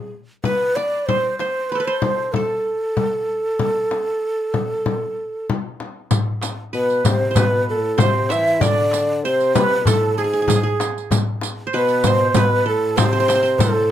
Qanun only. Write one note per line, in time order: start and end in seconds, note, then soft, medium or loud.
0.45 1.15 B4 medium
0.77 1.75 D5 medium
1.09 1.40 C5 medium
1.40 1.78 C5 medium
1.72 2.35 A4 soft
1.72 1.79 B4 medium
1.80 1.93 B4 medium
1.87 2.93 C5 medium
2.36 5.45 A4 medium
6.73 7.36 B4 medium
7.31 7.43 C5 soft
7.37 8.04 B4 medium
7.98 9.03 C5 medium
8.30 9.22 E5 medium
8.61 9.60 D5 medium
9.25 9.61 C5 medium
9.55 10.65 B4 medium
9.87 10.24 A4 medium
10.18 10.24 G#4 medium
10.24 10.33 G#4 soft
10.33 10.42 G#4 medium
10.42 10.47 G#4 soft
10.48 10.55 G#4 medium
10.56 10.63 G#4 soft
10.63 11.85 G#4 medium
11.67 11.80 C5 medium
11.74 12.13 B4 medium
12.07 12.42 C5 medium
12.36 13.03 B4 medium
12.66 13.60 A4 medium
12.97 13.05 C5 medium
13.05 13.12 C5 medium
13.13 13.20 C5 medium
13.20 13.28 C5 medium
13.28 13.35 C5 medium
13.35 13.42 C5 medium
13.43 13.91 C5 medium
13.61 13.91 A4 medium